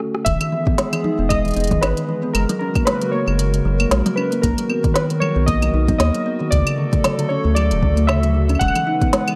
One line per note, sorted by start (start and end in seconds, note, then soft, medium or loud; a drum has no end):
0.00 0.24 A3 medium
0.00 0.24 C#4 medium
0.00 0.22 F#4 medium
0.00 0.24 A4 medium
0.00 cross-stick medium
0.15 cross-stick medium
0.25 0.37 E1 loud
0.25 0.31 D#3 medium
0.25 4.39 G#3 medium
0.25 2.33 B3 medium
0.25 2.33 G#4 medium
0.25 1.33 E5 loud
0.25 kick medium
0.25 closed hi-hat medium
0.41 0.47 D#3 medium
0.41 closed hi-hat medium
0.41 claves medium
0.52 0.61 E3 medium
0.67 0.73 B3 medium
0.67 kick loud
0.78 0.91 G#3 medium
0.78 snare loud
0.78 closed hi-hat medium
0.93 1.00 E3 loud
0.93 closed hi-hat medium
0.93 claves medium
1.04 1.13 D#4 medium
1.04 high tom medium
1.19 1.52 E1 medium
1.19 1.26 B3 medium
1.29 1.39 G#3 loud
1.29 1.83 D#5 loud
1.29 kick medium
1.29 closed hi-hat medium
1.29 claves medium
1.45 1.55 E3 medium
1.45 closed hi-hat soft
1.48 closed hi-hat soft
1.51 closed hi-hat soft
1.54 closed hi-hat soft
1.56 1.78 E1 loud
1.56 1.69 B3 medium
1.56 closed hi-hat soft
1.60 closed hi-hat soft
1.64 closed hi-hat soft
1.67 1.78 D#3 loud
1.67 kick medium
1.67 closed hi-hat soft
1.71 closed hi-hat soft
1.71 high tom medium
1.81 1.94 G#1 loud
1.81 1.88 D#3 medium
1.81 2.30 B4 medium
1.81 snare loud
1.81 closed hi-hat medium
1.81 claves medium
1.97 2.04 D#3 medium
1.97 closed hi-hat medium
2.09 2.17 E3 medium
2.23 2.30 B3 medium
2.33 2.46 F#1 loud
2.33 4.41 C#3 medium
2.33 2.48 G#3 medium
2.33 4.41 F#4 medium
2.33 2.58 A#4 medium
2.33 6.48 A#4 loud
2.33 closed hi-hat medium
2.33 claves medium
2.49 2.56 F#3 loud
2.49 closed hi-hat medium
2.59 2.69 C#4 medium
2.59 2.87 A#4 medium
2.75 2.82 A#3 medium
2.75 kick loud
2.75 closed hi-hat soft
2.75 claves soft
2.85 2.95 G#3 loud
2.85 3.10 B4 medium
2.85 snare loud
2.85 closed hi-hat medium
3.01 3.11 F#3 medium
3.01 closed hi-hat medium
3.12 3.26 A#3 medium
3.12 3.87 C#5 medium
3.28 3.61 F#1 medium
3.28 3.34 C#3 loud
3.28 claves soft
3.39 3.44 C#3 medium
3.39 closed hi-hat medium
3.54 3.60 C#3 medium
3.54 closed hi-hat medium
3.65 3.86 F#1 loud
3.65 3.74 F#3 medium
3.80 3.86 A#3 medium
3.80 closed hi-hat soft
3.80 claves medium
3.91 4.03 A#1 loud
3.91 4.04 G#3 medium
3.91 snare loud
3.91 closed hi-hat medium
4.06 4.12 F#3 loud
4.06 closed hi-hat medium
4.06 high tom medium
4.16 4.26 C#4 medium
4.16 4.43 B4 medium
4.16 claves medium
4.32 4.39 A#3 medium
4.32 closed hi-hat soft
4.42 4.55 B1 loud
4.42 6.50 D#3 medium
4.42 4.52 A#3 loud
4.42 8.57 F#4 medium
4.42 4.91 A#4 medium
4.42 kick medium
4.42 closed hi-hat medium
4.58 4.68 F#3 medium
4.58 closed hi-hat medium
4.69 4.82 B3 medium
4.69 claves medium
4.84 4.91 D#3 loud
4.84 kick loud
4.84 closed hi-hat soft
4.94 5.01 D#3 medium
4.94 5.06 B4 medium
4.94 snare loud
4.94 closed hi-hat medium
5.10 5.17 D#3 medium
5.10 closed hi-hat soft
5.20 5.30 F#3 medium
5.20 5.45 C#5 loud
5.20 high tom medium
5.20 claves medium
5.36 5.70 B1 medium
5.36 5.43 B3 medium
5.46 5.60 A#3 medium
5.46 5.97 D#5 loud
5.46 kick medium
5.46 closed hi-hat medium
5.62 5.69 F#3 medium
5.62 closed hi-hat medium
5.62 claves medium
5.74 5.95 B1 medium
5.74 5.82 D#4 medium
5.88 5.95 B3 medium
5.88 kick medium
5.88 closed hi-hat soft
5.88 high tom medium
5.98 6.11 D#2 loud
5.98 6.08 A#3 loud
5.98 6.53 D#5 loud
5.98 snare loud
5.98 closed hi-hat medium
6.14 6.25 F#3 medium
6.14 closed hi-hat medium
6.26 6.39 B3 medium
6.40 6.47 D#3 loud
6.51 6.64 D2 loud
6.51 6.57 C#3 medium
6.51 8.59 C#3 medium
6.51 8.59 A3 medium
6.51 8.59 A4 medium
6.51 7.26 D5 loud
6.51 kick medium
6.51 closed hi-hat medium
6.67 6.73 C#3 medium
6.67 closed hi-hat medium
6.67 claves medium
6.78 6.87 D3 medium
6.93 6.99 A3 medium
6.93 kick loud
6.93 closed hi-hat soft
7.04 7.17 F#3 medium
7.04 snare loud
7.04 closed hi-hat medium
7.04 claves medium
7.19 7.25 D3 loud
7.19 closed hi-hat soft
7.29 7.39 C#4 medium
7.29 7.54 C#5 medium
7.45 7.73 D2 medium
7.45 7.52 A3 medium
7.55 7.65 F#3 loud
7.55 8.09 D5 loud
7.55 closed hi-hat medium
7.55 claves soft
7.71 7.84 D1 medium
7.71 7.81 D3 medium
7.71 closed hi-hat soft
7.82 8.57 D2 loud
7.82 7.88 D3 medium
7.82 kick medium
7.97 8.04 A3 medium
7.97 closed hi-hat soft
8.07 8.17 C#3 loud
8.07 8.62 E5 loud
8.07 snare loud
8.07 claves medium
8.23 8.30 F#3 medium
8.23 closed hi-hat medium
8.23 high tom medium
8.35 8.43 C#3 medium
8.49 8.53 C#4 loud
8.49 closed hi-hat soft
8.49 claves soft
8.55 claves soft
8.59 8.72 E1 loud
8.59 8.74 G#3 medium
8.59 9.35 G#3 medium
8.59 9.35 B3 medium
8.59 9.35 B4 medium
8.59 9.35 F#5 loud
8.59 kick medium
8.59 closed hi-hat medium
8.59 claves soft
8.68 claves soft
8.75 8.82 E3 loud
8.75 closed hi-hat medium
8.75 claves medium
8.87 8.95 D#4 medium
9.01 9.08 B3 medium
9.01 kick loud
9.01 closed hi-hat soft
9.13 9.21 G#3 loud
9.13 snare loud
9.13 closed hi-hat medium
9.28 9.35 E3 medium
9.28 closed hi-hat soft
9.28 claves medium